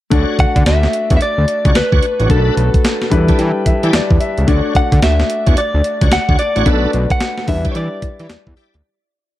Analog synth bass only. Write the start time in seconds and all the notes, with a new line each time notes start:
0.12 D2
0.39 D3
0.56 D3
0.67 D2
1.11 E2
1.38 D2
1.65 C#2
1.76 D2
1.93 D2
2.20 A1
2.30 B1
2.57 B1
3.12 E2
3.39 E3
3.66 E3
3.84 E3
3.94 E2
4.11 E2
4.38 C#2
4.48 D2
4.75 D3
4.92 D3
5.03 D2
5.47 E2
5.74 D2
6.02 C#2
6.12 D2
6.29 D2
6.56 A1
6.66 B1
6.94 B1
7.48 E2
7.76 E3
8.03 E3
8.20 E3
8.30 E2
8.47 E2
8.75 D2